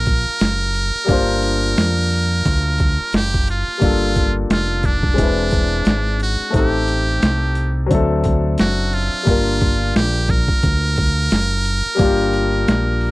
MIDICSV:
0, 0, Header, 1, 6, 480
1, 0, Start_track
1, 0, Tempo, 681818
1, 765, Time_signature, 4, 2, 24, 8
1, 9229, End_track
2, 0, Start_track
2, 0, Title_t, "Muted trumpet"
2, 0, Program_c, 0, 59
2, 0, Note_on_c, 0, 70, 105
2, 2212, Note_off_c, 0, 70, 0
2, 2225, Note_on_c, 0, 67, 104
2, 2439, Note_off_c, 0, 67, 0
2, 2467, Note_on_c, 0, 65, 107
2, 3062, Note_off_c, 0, 65, 0
2, 3182, Note_on_c, 0, 65, 91
2, 3418, Note_on_c, 0, 62, 88
2, 3429, Note_off_c, 0, 65, 0
2, 4371, Note_off_c, 0, 62, 0
2, 4381, Note_on_c, 0, 66, 92
2, 4597, Note_off_c, 0, 66, 0
2, 4619, Note_on_c, 0, 67, 91
2, 5544, Note_off_c, 0, 67, 0
2, 6056, Note_on_c, 0, 66, 93
2, 6293, Note_on_c, 0, 65, 105
2, 6303, Note_off_c, 0, 66, 0
2, 7009, Note_off_c, 0, 65, 0
2, 7015, Note_on_c, 0, 67, 96
2, 7255, Note_on_c, 0, 70, 103
2, 7266, Note_off_c, 0, 67, 0
2, 9229, Note_off_c, 0, 70, 0
2, 9229, End_track
3, 0, Start_track
3, 0, Title_t, "Grand piano"
3, 0, Program_c, 1, 0
3, 0, Note_on_c, 1, 55, 65
3, 0, Note_on_c, 1, 58, 63
3, 0, Note_on_c, 1, 62, 56
3, 0, Note_on_c, 1, 65, 59
3, 0, Note_on_c, 1, 70, 71
3, 721, Note_off_c, 1, 55, 0
3, 728, Note_off_c, 1, 58, 0
3, 735, Note_off_c, 1, 62, 0
3, 736, Note_on_c, 1, 55, 73
3, 741, Note_off_c, 1, 65, 0
3, 749, Note_off_c, 1, 70, 0
3, 750, Note_on_c, 1, 58, 70
3, 765, Note_on_c, 1, 62, 67
3, 778, Note_on_c, 1, 65, 70
3, 792, Note_on_c, 1, 72, 83
3, 2642, Note_off_c, 1, 55, 0
3, 2649, Note_off_c, 1, 58, 0
3, 2656, Note_off_c, 1, 62, 0
3, 2660, Note_on_c, 1, 55, 62
3, 2663, Note_off_c, 1, 65, 0
3, 2670, Note_off_c, 1, 72, 0
3, 2672, Note_on_c, 1, 58, 59
3, 2688, Note_on_c, 1, 62, 61
3, 2702, Note_on_c, 1, 65, 56
3, 2715, Note_on_c, 1, 69, 70
3, 3613, Note_off_c, 1, 55, 0
3, 3618, Note_on_c, 1, 56, 56
3, 3619, Note_off_c, 1, 58, 0
3, 3627, Note_off_c, 1, 62, 0
3, 3631, Note_on_c, 1, 60, 54
3, 3634, Note_off_c, 1, 65, 0
3, 3641, Note_off_c, 1, 69, 0
3, 3644, Note_on_c, 1, 62, 53
3, 3658, Note_on_c, 1, 64, 54
3, 3673, Note_on_c, 1, 71, 66
3, 4572, Note_off_c, 1, 56, 0
3, 4578, Note_off_c, 1, 60, 0
3, 4579, Note_on_c, 1, 57, 65
3, 4585, Note_off_c, 1, 62, 0
3, 4592, Note_off_c, 1, 64, 0
3, 4593, Note_on_c, 1, 60, 56
3, 4600, Note_off_c, 1, 71, 0
3, 4607, Note_on_c, 1, 63, 58
3, 4620, Note_on_c, 1, 67, 54
3, 4634, Note_on_c, 1, 69, 69
3, 5532, Note_off_c, 1, 57, 0
3, 5536, Note_on_c, 1, 54, 70
3, 5539, Note_off_c, 1, 60, 0
3, 5546, Note_off_c, 1, 63, 0
3, 5551, Note_on_c, 1, 60, 70
3, 5553, Note_off_c, 1, 67, 0
3, 5560, Note_off_c, 1, 69, 0
3, 5565, Note_on_c, 1, 62, 64
3, 5579, Note_on_c, 1, 76, 67
3, 5593, Note_on_c, 1, 69, 84
3, 6491, Note_off_c, 1, 54, 0
3, 6498, Note_off_c, 1, 60, 0
3, 6499, Note_on_c, 1, 55, 64
3, 6505, Note_off_c, 1, 62, 0
3, 6511, Note_on_c, 1, 58, 61
3, 6513, Note_off_c, 1, 76, 0
3, 6520, Note_off_c, 1, 69, 0
3, 6525, Note_on_c, 1, 62, 60
3, 6538, Note_on_c, 1, 65, 59
3, 6553, Note_on_c, 1, 70, 70
3, 8401, Note_off_c, 1, 55, 0
3, 8410, Note_off_c, 1, 58, 0
3, 8412, Note_on_c, 1, 55, 79
3, 8417, Note_off_c, 1, 62, 0
3, 8423, Note_off_c, 1, 65, 0
3, 8426, Note_on_c, 1, 58, 69
3, 8430, Note_off_c, 1, 70, 0
3, 8440, Note_on_c, 1, 62, 70
3, 8454, Note_on_c, 1, 65, 76
3, 8467, Note_on_c, 1, 67, 91
3, 9229, Note_off_c, 1, 55, 0
3, 9229, Note_off_c, 1, 58, 0
3, 9229, Note_off_c, 1, 62, 0
3, 9229, Note_off_c, 1, 65, 0
3, 9229, Note_off_c, 1, 67, 0
3, 9229, End_track
4, 0, Start_track
4, 0, Title_t, "Fingered electric bass"
4, 0, Program_c, 2, 33
4, 0, Note_on_c, 2, 34, 93
4, 168, Note_off_c, 2, 34, 0
4, 289, Note_on_c, 2, 30, 85
4, 648, Note_off_c, 2, 30, 0
4, 767, Note_on_c, 2, 31, 100
4, 1222, Note_off_c, 2, 31, 0
4, 1252, Note_on_c, 2, 41, 79
4, 1705, Note_off_c, 2, 41, 0
4, 1731, Note_on_c, 2, 38, 91
4, 2089, Note_off_c, 2, 38, 0
4, 2209, Note_on_c, 2, 30, 87
4, 2568, Note_off_c, 2, 30, 0
4, 2689, Note_on_c, 2, 31, 86
4, 3143, Note_off_c, 2, 31, 0
4, 3168, Note_on_c, 2, 29, 82
4, 3622, Note_off_c, 2, 29, 0
4, 3651, Note_on_c, 2, 28, 96
4, 4104, Note_off_c, 2, 28, 0
4, 4126, Note_on_c, 2, 32, 80
4, 4487, Note_off_c, 2, 32, 0
4, 4607, Note_on_c, 2, 33, 88
4, 5062, Note_off_c, 2, 33, 0
4, 5089, Note_on_c, 2, 36, 82
4, 5543, Note_off_c, 2, 36, 0
4, 5569, Note_on_c, 2, 38, 99
4, 6023, Note_off_c, 2, 38, 0
4, 6052, Note_on_c, 2, 30, 86
4, 6410, Note_off_c, 2, 30, 0
4, 6527, Note_on_c, 2, 31, 98
4, 6982, Note_off_c, 2, 31, 0
4, 7010, Note_on_c, 2, 34, 95
4, 7369, Note_off_c, 2, 34, 0
4, 7489, Note_on_c, 2, 38, 94
4, 7943, Note_off_c, 2, 38, 0
4, 7968, Note_on_c, 2, 30, 96
4, 8328, Note_off_c, 2, 30, 0
4, 8444, Note_on_c, 2, 31, 100
4, 8900, Note_off_c, 2, 31, 0
4, 8926, Note_on_c, 2, 34, 84
4, 9229, Note_off_c, 2, 34, 0
4, 9229, End_track
5, 0, Start_track
5, 0, Title_t, "Muted fingered electric bass strokes"
5, 191, Note_on_c, 9, 29, 47
5, 262, Note_off_c, 9, 29, 0
5, 2111, Note_on_c, 9, 29, 45
5, 2181, Note_off_c, 9, 29, 0
5, 2590, Note_on_c, 9, 29, 42
5, 2661, Note_off_c, 9, 29, 0
5, 6432, Note_on_c, 9, 29, 46
5, 6502, Note_off_c, 9, 29, 0
5, 9229, End_track
6, 0, Start_track
6, 0, Title_t, "Drums"
6, 39, Note_on_c, 9, 42, 77
6, 48, Note_on_c, 9, 36, 77
6, 110, Note_off_c, 9, 42, 0
6, 119, Note_off_c, 9, 36, 0
6, 279, Note_on_c, 9, 42, 106
6, 291, Note_on_c, 9, 38, 107
6, 350, Note_off_c, 9, 42, 0
6, 362, Note_off_c, 9, 38, 0
6, 525, Note_on_c, 9, 42, 77
6, 595, Note_off_c, 9, 42, 0
6, 765, Note_on_c, 9, 36, 96
6, 765, Note_on_c, 9, 42, 82
6, 835, Note_off_c, 9, 36, 0
6, 835, Note_off_c, 9, 42, 0
6, 1004, Note_on_c, 9, 42, 76
6, 1074, Note_off_c, 9, 42, 0
6, 1250, Note_on_c, 9, 42, 87
6, 1253, Note_on_c, 9, 38, 100
6, 1320, Note_off_c, 9, 42, 0
6, 1323, Note_off_c, 9, 38, 0
6, 1480, Note_on_c, 9, 46, 51
6, 1550, Note_off_c, 9, 46, 0
6, 1727, Note_on_c, 9, 42, 96
6, 1729, Note_on_c, 9, 36, 94
6, 1797, Note_off_c, 9, 42, 0
6, 1799, Note_off_c, 9, 36, 0
6, 1959, Note_on_c, 9, 42, 76
6, 1970, Note_on_c, 9, 36, 82
6, 2030, Note_off_c, 9, 42, 0
6, 2041, Note_off_c, 9, 36, 0
6, 2200, Note_on_c, 9, 42, 101
6, 2212, Note_on_c, 9, 38, 107
6, 2271, Note_off_c, 9, 42, 0
6, 2283, Note_off_c, 9, 38, 0
6, 2353, Note_on_c, 9, 36, 83
6, 2423, Note_off_c, 9, 36, 0
6, 2447, Note_on_c, 9, 42, 76
6, 2517, Note_off_c, 9, 42, 0
6, 2687, Note_on_c, 9, 36, 102
6, 2687, Note_on_c, 9, 42, 83
6, 2757, Note_off_c, 9, 36, 0
6, 2757, Note_off_c, 9, 42, 0
6, 2926, Note_on_c, 9, 42, 74
6, 2930, Note_on_c, 9, 36, 86
6, 2996, Note_off_c, 9, 42, 0
6, 3000, Note_off_c, 9, 36, 0
6, 3170, Note_on_c, 9, 42, 92
6, 3173, Note_on_c, 9, 38, 97
6, 3241, Note_off_c, 9, 42, 0
6, 3243, Note_off_c, 9, 38, 0
6, 3401, Note_on_c, 9, 42, 65
6, 3405, Note_on_c, 9, 36, 72
6, 3471, Note_off_c, 9, 42, 0
6, 3476, Note_off_c, 9, 36, 0
6, 3542, Note_on_c, 9, 36, 86
6, 3613, Note_off_c, 9, 36, 0
6, 3648, Note_on_c, 9, 42, 101
6, 3649, Note_on_c, 9, 36, 97
6, 3718, Note_off_c, 9, 42, 0
6, 3719, Note_off_c, 9, 36, 0
6, 3880, Note_on_c, 9, 42, 80
6, 3889, Note_on_c, 9, 36, 88
6, 3950, Note_off_c, 9, 42, 0
6, 3960, Note_off_c, 9, 36, 0
6, 4119, Note_on_c, 9, 42, 112
6, 4131, Note_on_c, 9, 38, 112
6, 4190, Note_off_c, 9, 42, 0
6, 4202, Note_off_c, 9, 38, 0
6, 4363, Note_on_c, 9, 42, 75
6, 4434, Note_off_c, 9, 42, 0
6, 4604, Note_on_c, 9, 36, 97
6, 4604, Note_on_c, 9, 42, 84
6, 4674, Note_off_c, 9, 42, 0
6, 4675, Note_off_c, 9, 36, 0
6, 4843, Note_on_c, 9, 42, 75
6, 4913, Note_off_c, 9, 42, 0
6, 5086, Note_on_c, 9, 42, 90
6, 5089, Note_on_c, 9, 38, 106
6, 5156, Note_off_c, 9, 42, 0
6, 5159, Note_off_c, 9, 38, 0
6, 5317, Note_on_c, 9, 42, 72
6, 5388, Note_off_c, 9, 42, 0
6, 5566, Note_on_c, 9, 42, 103
6, 5567, Note_on_c, 9, 36, 102
6, 5637, Note_off_c, 9, 36, 0
6, 5637, Note_off_c, 9, 42, 0
6, 5799, Note_on_c, 9, 42, 79
6, 5809, Note_on_c, 9, 36, 89
6, 5870, Note_off_c, 9, 42, 0
6, 5880, Note_off_c, 9, 36, 0
6, 6039, Note_on_c, 9, 42, 100
6, 6051, Note_on_c, 9, 38, 114
6, 6109, Note_off_c, 9, 42, 0
6, 6121, Note_off_c, 9, 38, 0
6, 6287, Note_on_c, 9, 42, 83
6, 6357, Note_off_c, 9, 42, 0
6, 6525, Note_on_c, 9, 36, 105
6, 6525, Note_on_c, 9, 42, 87
6, 6596, Note_off_c, 9, 36, 0
6, 6596, Note_off_c, 9, 42, 0
6, 6763, Note_on_c, 9, 42, 72
6, 6769, Note_on_c, 9, 36, 89
6, 6834, Note_off_c, 9, 42, 0
6, 6839, Note_off_c, 9, 36, 0
6, 7010, Note_on_c, 9, 42, 84
6, 7013, Note_on_c, 9, 38, 108
6, 7081, Note_off_c, 9, 42, 0
6, 7084, Note_off_c, 9, 38, 0
6, 7238, Note_on_c, 9, 42, 65
6, 7244, Note_on_c, 9, 36, 86
6, 7308, Note_off_c, 9, 42, 0
6, 7314, Note_off_c, 9, 36, 0
6, 7380, Note_on_c, 9, 36, 88
6, 7450, Note_off_c, 9, 36, 0
6, 7483, Note_on_c, 9, 42, 102
6, 7486, Note_on_c, 9, 36, 95
6, 7554, Note_off_c, 9, 42, 0
6, 7557, Note_off_c, 9, 36, 0
6, 7717, Note_on_c, 9, 42, 76
6, 7728, Note_on_c, 9, 36, 87
6, 7788, Note_off_c, 9, 42, 0
6, 7799, Note_off_c, 9, 36, 0
6, 7958, Note_on_c, 9, 42, 105
6, 7970, Note_on_c, 9, 38, 102
6, 8029, Note_off_c, 9, 42, 0
6, 8041, Note_off_c, 9, 38, 0
6, 8202, Note_on_c, 9, 42, 76
6, 8272, Note_off_c, 9, 42, 0
6, 8441, Note_on_c, 9, 42, 84
6, 8443, Note_on_c, 9, 36, 110
6, 8512, Note_off_c, 9, 42, 0
6, 8513, Note_off_c, 9, 36, 0
6, 8683, Note_on_c, 9, 42, 73
6, 8753, Note_off_c, 9, 42, 0
6, 8927, Note_on_c, 9, 42, 97
6, 8930, Note_on_c, 9, 38, 105
6, 8997, Note_off_c, 9, 42, 0
6, 9000, Note_off_c, 9, 38, 0
6, 9158, Note_on_c, 9, 46, 47
6, 9228, Note_off_c, 9, 46, 0
6, 9229, End_track
0, 0, End_of_file